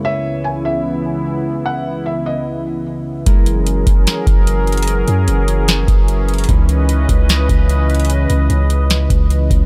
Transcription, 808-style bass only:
\new Staff \with { instrumentName = "808-style bass" } { \clef bass \time 4/4 \key fis \mixolydian \tempo 4 = 149 r1 | r1 | fis,,4. fis,,8 r8 fis,,4.~ | fis,,8 fis,8 fis,,4. fis,,4. |
cis,4. cis,4 cis,4.~ | cis,8 cis,8 cis,4. cis,4 cis,8 | }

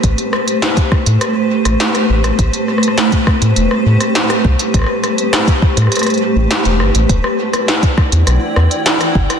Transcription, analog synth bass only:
\new Staff \with { instrumentName = "Analog synth bass" } { \clef bass \time 4/4 \key a \dorian \tempo 4 = 102 a,,16 r4. a,16 r8. a,,16 r8 a,,8 | a,,16 r4. a,16 e,,16 r16 a,16 r8. c,16 r16 | a,,16 r4. a,16 r8. a,,16 r16 e,,16 g,,16 a,,16 | e,,16 r4. e,16 b,,16 r16 e,16 r8. g,,16 r16 | }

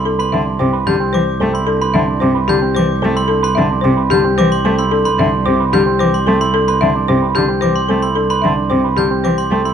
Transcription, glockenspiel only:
\new Staff \with { instrumentName = "Glockenspiel" } { \time 3/4 \key c \major \tempo 4 = 111 r16 c'''16 r4 g'''16 r16 d'''16 r8 c'''16 | r16 c'''16 r4 g'''16 r16 d'''16 r8 c'''16 | r16 c'''16 r4 g'''16 r16 d'''16 c'''16 r16 c'''16 | r16 c'''16 r4 g'''16 r16 d'''16 c'''16 r16 c'''16 |
r16 c'''16 r4 g'''16 r16 d'''16 c'''16 r16 c'''16 | r16 c'''16 r4 g'''16 r16 d'''16 c'''16 r16 c'''16 | }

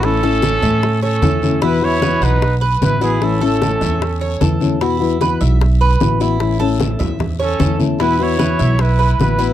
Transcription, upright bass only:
\new Staff \with { instrumentName = "Upright bass" } { \clef bass \time 4/4 \key a \lydian \tempo 4 = 150 a,,4. a,4. e,4~ | e,4. b,,4. a,,4~ | a,,4. e,4. e,4~ | e,4. b,,4. a,,4~ |
a,,4. e,4. e,4~ | e,4. b,,4. a,,4 | }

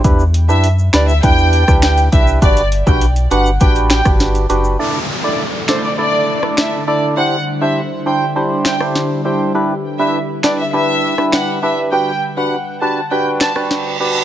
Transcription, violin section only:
\new Staff \with { instrumentName = "Violin section" } { \time 4/4 \key e \minor \tempo 4 = 101 r8. e''16 r8 d''16 e''16 g''8. r16 g''16 r16 e''16 r16 | d''8 r16 g''16 r8 fis''16 r16 g''16 r16 g''16 r4 r16 | r8. d''16 r8 c''16 d''16 d''8. r16 e''16 r16 d''16 r16 | fis''8 r16 e''16 r8 g''16 r8. g''16 r4 r16 |
r8. e''16 r8 d''16 e''16 e''8. r16 fis''16 r16 e''16 r16 | g''8 r16 fis''16 r8 a''16 r16 g''16 r16 a''16 r4 r16 | }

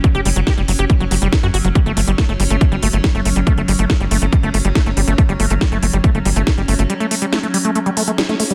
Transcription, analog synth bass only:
\new Staff \with { instrumentName = "Analog synth bass" } { \clef bass \time 4/4 \tempo 4 = 140 r16 fis,,16 fis,,16 fis,,16 r16 fis,,16 fis,,16 fis,,16 r16 fis,,16 fis,,16 fis,,16 r16 fis,16 g,,16 fis,,16 | r16 g,,16 g,,16 g,,16 r16 g,,16 g,,16 g,,16 r16 g,,16 g,,16 g,,16 r16 g,,16 g,,16 g,,16 | r16 g,,16 g,,16 g,,16 r16 g,,16 g,,16 g,,16 r16 g,,16 g,,16 g,,16 r16 g,,16 g,,16 g,,16 | r16 g,,16 g,,16 g,,16 r16 g,,16 g,,16 g,,16 r16 g,,16 g,,16 g,,16 r16 g,,16 g,,16 g,,16 |
r1 | }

